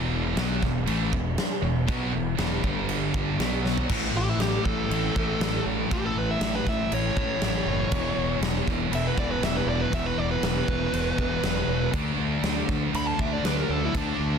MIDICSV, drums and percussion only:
0, 0, Header, 1, 2, 480
1, 0, Start_track
1, 0, Tempo, 502513
1, 1803, Time_signature, 4, 2, 24, 8
1, 13739, End_track
2, 0, Start_track
2, 0, Title_t, "Drums"
2, 352, Note_on_c, 9, 49, 62
2, 355, Note_on_c, 9, 38, 106
2, 448, Note_off_c, 9, 49, 0
2, 451, Note_off_c, 9, 38, 0
2, 595, Note_on_c, 9, 38, 35
2, 597, Note_on_c, 9, 36, 87
2, 691, Note_off_c, 9, 38, 0
2, 693, Note_off_c, 9, 36, 0
2, 834, Note_on_c, 9, 49, 60
2, 930, Note_off_c, 9, 49, 0
2, 1079, Note_on_c, 9, 36, 89
2, 1174, Note_off_c, 9, 36, 0
2, 1317, Note_on_c, 9, 49, 60
2, 1320, Note_on_c, 9, 38, 108
2, 1412, Note_off_c, 9, 49, 0
2, 1415, Note_off_c, 9, 38, 0
2, 1798, Note_on_c, 9, 49, 53
2, 1800, Note_on_c, 9, 36, 114
2, 1894, Note_off_c, 9, 49, 0
2, 1896, Note_off_c, 9, 36, 0
2, 2277, Note_on_c, 9, 49, 55
2, 2280, Note_on_c, 9, 38, 111
2, 2373, Note_off_c, 9, 49, 0
2, 2376, Note_off_c, 9, 38, 0
2, 2520, Note_on_c, 9, 36, 92
2, 2616, Note_off_c, 9, 36, 0
2, 2758, Note_on_c, 9, 49, 62
2, 2853, Note_off_c, 9, 49, 0
2, 3002, Note_on_c, 9, 36, 89
2, 3098, Note_off_c, 9, 36, 0
2, 3246, Note_on_c, 9, 49, 63
2, 3249, Note_on_c, 9, 38, 102
2, 3341, Note_off_c, 9, 49, 0
2, 3344, Note_off_c, 9, 38, 0
2, 3492, Note_on_c, 9, 38, 69
2, 3587, Note_off_c, 9, 38, 0
2, 3606, Note_on_c, 9, 43, 87
2, 3702, Note_off_c, 9, 43, 0
2, 3719, Note_on_c, 9, 49, 59
2, 3719, Note_on_c, 9, 57, 115
2, 3722, Note_on_c, 9, 36, 109
2, 3815, Note_off_c, 9, 49, 0
2, 3815, Note_off_c, 9, 57, 0
2, 3818, Note_off_c, 9, 36, 0
2, 4201, Note_on_c, 9, 49, 63
2, 4204, Note_on_c, 9, 38, 113
2, 4297, Note_off_c, 9, 49, 0
2, 4300, Note_off_c, 9, 38, 0
2, 4446, Note_on_c, 9, 36, 91
2, 4541, Note_off_c, 9, 36, 0
2, 4692, Note_on_c, 9, 49, 65
2, 4788, Note_off_c, 9, 49, 0
2, 4929, Note_on_c, 9, 36, 91
2, 5024, Note_off_c, 9, 36, 0
2, 5168, Note_on_c, 9, 49, 59
2, 5171, Note_on_c, 9, 38, 118
2, 5264, Note_off_c, 9, 49, 0
2, 5266, Note_off_c, 9, 38, 0
2, 5648, Note_on_c, 9, 49, 57
2, 5649, Note_on_c, 9, 36, 115
2, 5744, Note_off_c, 9, 36, 0
2, 5744, Note_off_c, 9, 49, 0
2, 6123, Note_on_c, 9, 49, 65
2, 6126, Note_on_c, 9, 38, 114
2, 6218, Note_off_c, 9, 49, 0
2, 6221, Note_off_c, 9, 38, 0
2, 6368, Note_on_c, 9, 36, 90
2, 6371, Note_on_c, 9, 38, 33
2, 6463, Note_off_c, 9, 36, 0
2, 6467, Note_off_c, 9, 38, 0
2, 6608, Note_on_c, 9, 49, 63
2, 6704, Note_off_c, 9, 49, 0
2, 6846, Note_on_c, 9, 36, 88
2, 6942, Note_off_c, 9, 36, 0
2, 7083, Note_on_c, 9, 49, 61
2, 7086, Note_on_c, 9, 38, 110
2, 7179, Note_off_c, 9, 49, 0
2, 7182, Note_off_c, 9, 38, 0
2, 7562, Note_on_c, 9, 49, 64
2, 7566, Note_on_c, 9, 36, 112
2, 7657, Note_off_c, 9, 49, 0
2, 7661, Note_off_c, 9, 36, 0
2, 8047, Note_on_c, 9, 49, 69
2, 8050, Note_on_c, 9, 38, 118
2, 8143, Note_off_c, 9, 49, 0
2, 8146, Note_off_c, 9, 38, 0
2, 8286, Note_on_c, 9, 36, 91
2, 8293, Note_on_c, 9, 38, 33
2, 8382, Note_off_c, 9, 36, 0
2, 8388, Note_off_c, 9, 38, 0
2, 8528, Note_on_c, 9, 49, 69
2, 8624, Note_off_c, 9, 49, 0
2, 8765, Note_on_c, 9, 36, 91
2, 8860, Note_off_c, 9, 36, 0
2, 9007, Note_on_c, 9, 49, 59
2, 9010, Note_on_c, 9, 38, 107
2, 9103, Note_off_c, 9, 49, 0
2, 9106, Note_off_c, 9, 38, 0
2, 9485, Note_on_c, 9, 36, 101
2, 9486, Note_on_c, 9, 49, 62
2, 9581, Note_off_c, 9, 36, 0
2, 9581, Note_off_c, 9, 49, 0
2, 9962, Note_on_c, 9, 49, 61
2, 9965, Note_on_c, 9, 38, 120
2, 10057, Note_off_c, 9, 49, 0
2, 10060, Note_off_c, 9, 38, 0
2, 10204, Note_on_c, 9, 36, 93
2, 10299, Note_off_c, 9, 36, 0
2, 10446, Note_on_c, 9, 49, 58
2, 10541, Note_off_c, 9, 49, 0
2, 10683, Note_on_c, 9, 36, 90
2, 10778, Note_off_c, 9, 36, 0
2, 10921, Note_on_c, 9, 49, 61
2, 10924, Note_on_c, 9, 38, 110
2, 11017, Note_off_c, 9, 49, 0
2, 11020, Note_off_c, 9, 38, 0
2, 11401, Note_on_c, 9, 49, 64
2, 11402, Note_on_c, 9, 36, 115
2, 11496, Note_off_c, 9, 49, 0
2, 11497, Note_off_c, 9, 36, 0
2, 11878, Note_on_c, 9, 49, 69
2, 11881, Note_on_c, 9, 38, 113
2, 11973, Note_off_c, 9, 49, 0
2, 11976, Note_off_c, 9, 38, 0
2, 12120, Note_on_c, 9, 36, 95
2, 12122, Note_on_c, 9, 38, 36
2, 12216, Note_off_c, 9, 36, 0
2, 12217, Note_off_c, 9, 38, 0
2, 12364, Note_on_c, 9, 49, 66
2, 12460, Note_off_c, 9, 49, 0
2, 12601, Note_on_c, 9, 36, 90
2, 12697, Note_off_c, 9, 36, 0
2, 12845, Note_on_c, 9, 49, 63
2, 12847, Note_on_c, 9, 38, 115
2, 12940, Note_off_c, 9, 49, 0
2, 12943, Note_off_c, 9, 38, 0
2, 13322, Note_on_c, 9, 36, 103
2, 13324, Note_on_c, 9, 49, 61
2, 13418, Note_off_c, 9, 36, 0
2, 13419, Note_off_c, 9, 49, 0
2, 13739, End_track
0, 0, End_of_file